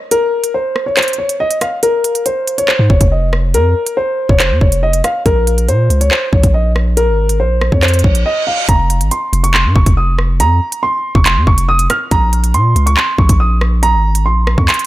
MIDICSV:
0, 0, Header, 1, 5, 480
1, 0, Start_track
1, 0, Key_signature, -4, "minor"
1, 0, Tempo, 428571
1, 128, Time_signature, 4, 2, 24, 8
1, 16648, End_track
2, 0, Start_track
2, 0, Title_t, "Grand piano"
2, 0, Program_c, 0, 0
2, 128, Note_on_c, 0, 70, 108
2, 579, Note_off_c, 0, 70, 0
2, 609, Note_on_c, 0, 72, 79
2, 947, Note_off_c, 0, 72, 0
2, 967, Note_on_c, 0, 73, 72
2, 1058, Note_off_c, 0, 73, 0
2, 1087, Note_on_c, 0, 72, 90
2, 1270, Note_off_c, 0, 72, 0
2, 1325, Note_on_c, 0, 73, 77
2, 1509, Note_off_c, 0, 73, 0
2, 1569, Note_on_c, 0, 75, 96
2, 1751, Note_off_c, 0, 75, 0
2, 1807, Note_on_c, 0, 77, 81
2, 1989, Note_off_c, 0, 77, 0
2, 2047, Note_on_c, 0, 70, 98
2, 2499, Note_off_c, 0, 70, 0
2, 2529, Note_on_c, 0, 72, 75
2, 2867, Note_off_c, 0, 72, 0
2, 2890, Note_on_c, 0, 73, 77
2, 2980, Note_off_c, 0, 73, 0
2, 3006, Note_on_c, 0, 72, 81
2, 3189, Note_off_c, 0, 72, 0
2, 3248, Note_on_c, 0, 73, 82
2, 3430, Note_off_c, 0, 73, 0
2, 3490, Note_on_c, 0, 75, 70
2, 3671, Note_off_c, 0, 75, 0
2, 3969, Note_on_c, 0, 70, 101
2, 4420, Note_off_c, 0, 70, 0
2, 4446, Note_on_c, 0, 72, 87
2, 4785, Note_off_c, 0, 72, 0
2, 4808, Note_on_c, 0, 73, 78
2, 4899, Note_off_c, 0, 73, 0
2, 4928, Note_on_c, 0, 72, 88
2, 5110, Note_off_c, 0, 72, 0
2, 5168, Note_on_c, 0, 73, 80
2, 5350, Note_off_c, 0, 73, 0
2, 5408, Note_on_c, 0, 75, 92
2, 5590, Note_off_c, 0, 75, 0
2, 5646, Note_on_c, 0, 77, 85
2, 5829, Note_off_c, 0, 77, 0
2, 5888, Note_on_c, 0, 70, 106
2, 6339, Note_off_c, 0, 70, 0
2, 6368, Note_on_c, 0, 72, 90
2, 6706, Note_off_c, 0, 72, 0
2, 6728, Note_on_c, 0, 73, 81
2, 6819, Note_off_c, 0, 73, 0
2, 6847, Note_on_c, 0, 72, 81
2, 7029, Note_off_c, 0, 72, 0
2, 7087, Note_on_c, 0, 73, 73
2, 7270, Note_off_c, 0, 73, 0
2, 7326, Note_on_c, 0, 75, 74
2, 7509, Note_off_c, 0, 75, 0
2, 7806, Note_on_c, 0, 70, 107
2, 8258, Note_off_c, 0, 70, 0
2, 8285, Note_on_c, 0, 72, 77
2, 8625, Note_off_c, 0, 72, 0
2, 8645, Note_on_c, 0, 73, 73
2, 8737, Note_off_c, 0, 73, 0
2, 8765, Note_on_c, 0, 72, 89
2, 8948, Note_off_c, 0, 72, 0
2, 9005, Note_on_c, 0, 73, 76
2, 9189, Note_off_c, 0, 73, 0
2, 9248, Note_on_c, 0, 75, 95
2, 9430, Note_off_c, 0, 75, 0
2, 9486, Note_on_c, 0, 77, 83
2, 9669, Note_off_c, 0, 77, 0
2, 9727, Note_on_c, 0, 82, 102
2, 10178, Note_off_c, 0, 82, 0
2, 10208, Note_on_c, 0, 84, 75
2, 10546, Note_off_c, 0, 84, 0
2, 10568, Note_on_c, 0, 85, 76
2, 10659, Note_off_c, 0, 85, 0
2, 10685, Note_on_c, 0, 84, 83
2, 10868, Note_off_c, 0, 84, 0
2, 10928, Note_on_c, 0, 85, 85
2, 11110, Note_off_c, 0, 85, 0
2, 11168, Note_on_c, 0, 87, 72
2, 11350, Note_off_c, 0, 87, 0
2, 11649, Note_on_c, 0, 82, 109
2, 12100, Note_off_c, 0, 82, 0
2, 12127, Note_on_c, 0, 84, 91
2, 12466, Note_off_c, 0, 84, 0
2, 12489, Note_on_c, 0, 85, 80
2, 12580, Note_off_c, 0, 85, 0
2, 12609, Note_on_c, 0, 84, 90
2, 12791, Note_off_c, 0, 84, 0
2, 12848, Note_on_c, 0, 85, 82
2, 13030, Note_off_c, 0, 85, 0
2, 13088, Note_on_c, 0, 87, 95
2, 13270, Note_off_c, 0, 87, 0
2, 13328, Note_on_c, 0, 89, 86
2, 13510, Note_off_c, 0, 89, 0
2, 13568, Note_on_c, 0, 82, 112
2, 14019, Note_off_c, 0, 82, 0
2, 14049, Note_on_c, 0, 84, 93
2, 14387, Note_off_c, 0, 84, 0
2, 14408, Note_on_c, 0, 85, 85
2, 14499, Note_off_c, 0, 85, 0
2, 14528, Note_on_c, 0, 84, 84
2, 14710, Note_off_c, 0, 84, 0
2, 14767, Note_on_c, 0, 85, 76
2, 14950, Note_off_c, 0, 85, 0
2, 15008, Note_on_c, 0, 87, 78
2, 15190, Note_off_c, 0, 87, 0
2, 15487, Note_on_c, 0, 82, 113
2, 15938, Note_off_c, 0, 82, 0
2, 15967, Note_on_c, 0, 84, 77
2, 16306, Note_off_c, 0, 84, 0
2, 16327, Note_on_c, 0, 85, 74
2, 16418, Note_off_c, 0, 85, 0
2, 16447, Note_on_c, 0, 84, 89
2, 16629, Note_off_c, 0, 84, 0
2, 16648, End_track
3, 0, Start_track
3, 0, Title_t, "808-style bass"
3, 0, Program_c, 1, 38
3, 3128, Note_on_c, 1, 44, 95
3, 3242, Note_off_c, 1, 44, 0
3, 3247, Note_on_c, 1, 29, 109
3, 3363, Note_off_c, 1, 29, 0
3, 3368, Note_on_c, 1, 29, 111
3, 3968, Note_on_c, 1, 41, 100
3, 3985, Note_off_c, 1, 29, 0
3, 4196, Note_off_c, 1, 41, 0
3, 4809, Note_on_c, 1, 29, 107
3, 5048, Note_on_c, 1, 41, 98
3, 5064, Note_off_c, 1, 29, 0
3, 5162, Note_off_c, 1, 41, 0
3, 5167, Note_on_c, 1, 29, 109
3, 5628, Note_off_c, 1, 29, 0
3, 5888, Note_on_c, 1, 34, 105
3, 6368, Note_on_c, 1, 46, 101
3, 6384, Note_off_c, 1, 34, 0
3, 6596, Note_off_c, 1, 46, 0
3, 6607, Note_on_c, 1, 37, 104
3, 6838, Note_off_c, 1, 37, 0
3, 7086, Note_on_c, 1, 34, 107
3, 7202, Note_off_c, 1, 34, 0
3, 7208, Note_on_c, 1, 34, 107
3, 7927, Note_on_c, 1, 32, 103
3, 7944, Note_off_c, 1, 34, 0
3, 8287, Note_on_c, 1, 34, 94
3, 8304, Note_off_c, 1, 32, 0
3, 8629, Note_off_c, 1, 34, 0
3, 8649, Note_on_c, 1, 41, 105
3, 8994, Note_off_c, 1, 41, 0
3, 9007, Note_on_c, 1, 34, 109
3, 9238, Note_off_c, 1, 34, 0
3, 9728, Note_on_c, 1, 29, 106
3, 10088, Note_on_c, 1, 32, 99
3, 10105, Note_off_c, 1, 29, 0
3, 10202, Note_off_c, 1, 32, 0
3, 10448, Note_on_c, 1, 29, 114
3, 10807, Note_on_c, 1, 44, 98
3, 10824, Note_off_c, 1, 29, 0
3, 10922, Note_off_c, 1, 44, 0
3, 10927, Note_on_c, 1, 29, 110
3, 11042, Note_off_c, 1, 29, 0
3, 11048, Note_on_c, 1, 29, 108
3, 11647, Note_on_c, 1, 41, 100
3, 11664, Note_off_c, 1, 29, 0
3, 11875, Note_off_c, 1, 41, 0
3, 12488, Note_on_c, 1, 29, 111
3, 12727, Note_on_c, 1, 41, 98
3, 12744, Note_off_c, 1, 29, 0
3, 12841, Note_off_c, 1, 41, 0
3, 12847, Note_on_c, 1, 29, 110
3, 13308, Note_off_c, 1, 29, 0
3, 13568, Note_on_c, 1, 34, 107
3, 14048, Note_on_c, 1, 46, 100
3, 14064, Note_off_c, 1, 34, 0
3, 14276, Note_off_c, 1, 46, 0
3, 14288, Note_on_c, 1, 37, 107
3, 14518, Note_off_c, 1, 37, 0
3, 14767, Note_on_c, 1, 34, 109
3, 14882, Note_off_c, 1, 34, 0
3, 14888, Note_on_c, 1, 34, 106
3, 15608, Note_on_c, 1, 32, 106
3, 15624, Note_off_c, 1, 34, 0
3, 15967, Note_on_c, 1, 34, 101
3, 15984, Note_off_c, 1, 32, 0
3, 16310, Note_off_c, 1, 34, 0
3, 16328, Note_on_c, 1, 41, 102
3, 16443, Note_off_c, 1, 41, 0
3, 16648, End_track
4, 0, Start_track
4, 0, Title_t, "Reverse cymbal"
4, 0, Program_c, 2, 119
4, 8768, Note_on_c, 2, 60, 88
4, 9728, Note_off_c, 2, 60, 0
4, 16648, End_track
5, 0, Start_track
5, 0, Title_t, "Drums"
5, 127, Note_on_c, 9, 42, 87
5, 239, Note_off_c, 9, 42, 0
5, 489, Note_on_c, 9, 42, 80
5, 601, Note_off_c, 9, 42, 0
5, 848, Note_on_c, 9, 37, 94
5, 960, Note_off_c, 9, 37, 0
5, 1087, Note_on_c, 9, 39, 110
5, 1088, Note_on_c, 9, 42, 59
5, 1148, Note_off_c, 9, 42, 0
5, 1148, Note_on_c, 9, 42, 58
5, 1199, Note_off_c, 9, 39, 0
5, 1208, Note_off_c, 9, 42, 0
5, 1208, Note_on_c, 9, 42, 56
5, 1268, Note_off_c, 9, 42, 0
5, 1268, Note_on_c, 9, 42, 57
5, 1380, Note_off_c, 9, 42, 0
5, 1448, Note_on_c, 9, 42, 84
5, 1560, Note_off_c, 9, 42, 0
5, 1686, Note_on_c, 9, 42, 84
5, 1798, Note_off_c, 9, 42, 0
5, 1806, Note_on_c, 9, 42, 74
5, 1808, Note_on_c, 9, 37, 95
5, 1918, Note_off_c, 9, 42, 0
5, 1920, Note_off_c, 9, 37, 0
5, 2048, Note_on_c, 9, 42, 90
5, 2160, Note_off_c, 9, 42, 0
5, 2288, Note_on_c, 9, 42, 86
5, 2400, Note_off_c, 9, 42, 0
5, 2409, Note_on_c, 9, 42, 69
5, 2521, Note_off_c, 9, 42, 0
5, 2528, Note_on_c, 9, 42, 88
5, 2640, Note_off_c, 9, 42, 0
5, 2772, Note_on_c, 9, 42, 77
5, 2884, Note_off_c, 9, 42, 0
5, 2892, Note_on_c, 9, 42, 86
5, 3004, Note_off_c, 9, 42, 0
5, 3008, Note_on_c, 9, 39, 107
5, 3120, Note_off_c, 9, 39, 0
5, 3247, Note_on_c, 9, 36, 102
5, 3359, Note_off_c, 9, 36, 0
5, 3367, Note_on_c, 9, 42, 86
5, 3368, Note_on_c, 9, 36, 99
5, 3479, Note_off_c, 9, 42, 0
5, 3480, Note_off_c, 9, 36, 0
5, 3728, Note_on_c, 9, 37, 97
5, 3840, Note_off_c, 9, 37, 0
5, 3968, Note_on_c, 9, 42, 88
5, 4080, Note_off_c, 9, 42, 0
5, 4329, Note_on_c, 9, 42, 76
5, 4441, Note_off_c, 9, 42, 0
5, 4809, Note_on_c, 9, 36, 90
5, 4921, Note_off_c, 9, 36, 0
5, 4927, Note_on_c, 9, 39, 104
5, 4929, Note_on_c, 9, 42, 67
5, 5039, Note_off_c, 9, 39, 0
5, 5041, Note_off_c, 9, 42, 0
5, 5167, Note_on_c, 9, 36, 101
5, 5279, Note_off_c, 9, 36, 0
5, 5287, Note_on_c, 9, 42, 86
5, 5399, Note_off_c, 9, 42, 0
5, 5526, Note_on_c, 9, 42, 84
5, 5638, Note_off_c, 9, 42, 0
5, 5646, Note_on_c, 9, 42, 75
5, 5648, Note_on_c, 9, 37, 95
5, 5758, Note_off_c, 9, 42, 0
5, 5760, Note_off_c, 9, 37, 0
5, 5888, Note_on_c, 9, 36, 111
5, 5888, Note_on_c, 9, 42, 86
5, 6000, Note_off_c, 9, 36, 0
5, 6000, Note_off_c, 9, 42, 0
5, 6129, Note_on_c, 9, 42, 84
5, 6241, Note_off_c, 9, 42, 0
5, 6249, Note_on_c, 9, 42, 71
5, 6361, Note_off_c, 9, 42, 0
5, 6368, Note_on_c, 9, 42, 86
5, 6480, Note_off_c, 9, 42, 0
5, 6612, Note_on_c, 9, 42, 78
5, 6724, Note_off_c, 9, 42, 0
5, 6732, Note_on_c, 9, 42, 86
5, 6844, Note_off_c, 9, 42, 0
5, 6847, Note_on_c, 9, 39, 107
5, 6959, Note_off_c, 9, 39, 0
5, 7086, Note_on_c, 9, 36, 102
5, 7198, Note_off_c, 9, 36, 0
5, 7207, Note_on_c, 9, 42, 86
5, 7208, Note_on_c, 9, 36, 97
5, 7319, Note_off_c, 9, 42, 0
5, 7320, Note_off_c, 9, 36, 0
5, 7568, Note_on_c, 9, 37, 96
5, 7680, Note_off_c, 9, 37, 0
5, 7808, Note_on_c, 9, 42, 91
5, 7920, Note_off_c, 9, 42, 0
5, 8169, Note_on_c, 9, 42, 76
5, 8281, Note_off_c, 9, 42, 0
5, 8528, Note_on_c, 9, 37, 96
5, 8640, Note_off_c, 9, 37, 0
5, 8649, Note_on_c, 9, 36, 93
5, 8761, Note_off_c, 9, 36, 0
5, 8767, Note_on_c, 9, 39, 108
5, 8768, Note_on_c, 9, 42, 57
5, 8828, Note_off_c, 9, 42, 0
5, 8828, Note_on_c, 9, 42, 57
5, 8879, Note_off_c, 9, 39, 0
5, 8888, Note_off_c, 9, 42, 0
5, 8888, Note_on_c, 9, 42, 59
5, 8948, Note_off_c, 9, 42, 0
5, 8948, Note_on_c, 9, 42, 56
5, 9007, Note_on_c, 9, 36, 98
5, 9060, Note_off_c, 9, 42, 0
5, 9119, Note_off_c, 9, 36, 0
5, 9127, Note_on_c, 9, 42, 87
5, 9239, Note_off_c, 9, 42, 0
5, 9728, Note_on_c, 9, 36, 112
5, 9728, Note_on_c, 9, 42, 89
5, 9840, Note_off_c, 9, 36, 0
5, 9840, Note_off_c, 9, 42, 0
5, 9968, Note_on_c, 9, 42, 87
5, 10080, Note_off_c, 9, 42, 0
5, 10089, Note_on_c, 9, 42, 74
5, 10201, Note_off_c, 9, 42, 0
5, 10207, Note_on_c, 9, 42, 91
5, 10319, Note_off_c, 9, 42, 0
5, 10452, Note_on_c, 9, 42, 76
5, 10564, Note_off_c, 9, 42, 0
5, 10572, Note_on_c, 9, 42, 88
5, 10684, Note_off_c, 9, 42, 0
5, 10687, Note_on_c, 9, 39, 109
5, 10799, Note_off_c, 9, 39, 0
5, 10926, Note_on_c, 9, 36, 101
5, 11038, Note_off_c, 9, 36, 0
5, 11047, Note_on_c, 9, 42, 88
5, 11048, Note_on_c, 9, 36, 98
5, 11159, Note_off_c, 9, 42, 0
5, 11160, Note_off_c, 9, 36, 0
5, 11408, Note_on_c, 9, 37, 95
5, 11520, Note_off_c, 9, 37, 0
5, 11648, Note_on_c, 9, 42, 87
5, 11760, Note_off_c, 9, 42, 0
5, 12009, Note_on_c, 9, 42, 81
5, 12121, Note_off_c, 9, 42, 0
5, 12488, Note_on_c, 9, 36, 97
5, 12600, Note_off_c, 9, 36, 0
5, 12608, Note_on_c, 9, 39, 110
5, 12609, Note_on_c, 9, 42, 69
5, 12720, Note_off_c, 9, 39, 0
5, 12721, Note_off_c, 9, 42, 0
5, 12847, Note_on_c, 9, 36, 99
5, 12959, Note_off_c, 9, 36, 0
5, 12967, Note_on_c, 9, 42, 90
5, 13079, Note_off_c, 9, 42, 0
5, 13206, Note_on_c, 9, 42, 86
5, 13318, Note_off_c, 9, 42, 0
5, 13326, Note_on_c, 9, 42, 76
5, 13328, Note_on_c, 9, 37, 98
5, 13438, Note_off_c, 9, 42, 0
5, 13440, Note_off_c, 9, 37, 0
5, 13568, Note_on_c, 9, 36, 111
5, 13568, Note_on_c, 9, 42, 94
5, 13680, Note_off_c, 9, 36, 0
5, 13680, Note_off_c, 9, 42, 0
5, 13808, Note_on_c, 9, 42, 89
5, 13920, Note_off_c, 9, 42, 0
5, 13929, Note_on_c, 9, 42, 75
5, 14041, Note_off_c, 9, 42, 0
5, 14048, Note_on_c, 9, 42, 89
5, 14160, Note_off_c, 9, 42, 0
5, 14292, Note_on_c, 9, 42, 75
5, 14404, Note_off_c, 9, 42, 0
5, 14412, Note_on_c, 9, 42, 88
5, 14524, Note_off_c, 9, 42, 0
5, 14527, Note_on_c, 9, 39, 107
5, 14639, Note_off_c, 9, 39, 0
5, 14767, Note_on_c, 9, 36, 102
5, 14879, Note_off_c, 9, 36, 0
5, 14887, Note_on_c, 9, 42, 92
5, 14888, Note_on_c, 9, 36, 98
5, 14999, Note_off_c, 9, 42, 0
5, 15000, Note_off_c, 9, 36, 0
5, 15247, Note_on_c, 9, 37, 95
5, 15359, Note_off_c, 9, 37, 0
5, 15487, Note_on_c, 9, 42, 90
5, 15599, Note_off_c, 9, 42, 0
5, 15849, Note_on_c, 9, 42, 77
5, 15961, Note_off_c, 9, 42, 0
5, 16208, Note_on_c, 9, 37, 98
5, 16320, Note_off_c, 9, 37, 0
5, 16328, Note_on_c, 9, 36, 95
5, 16440, Note_off_c, 9, 36, 0
5, 16447, Note_on_c, 9, 39, 107
5, 16447, Note_on_c, 9, 42, 58
5, 16507, Note_off_c, 9, 42, 0
5, 16507, Note_on_c, 9, 42, 58
5, 16559, Note_off_c, 9, 39, 0
5, 16568, Note_off_c, 9, 42, 0
5, 16568, Note_on_c, 9, 42, 58
5, 16648, Note_off_c, 9, 42, 0
5, 16648, End_track
0, 0, End_of_file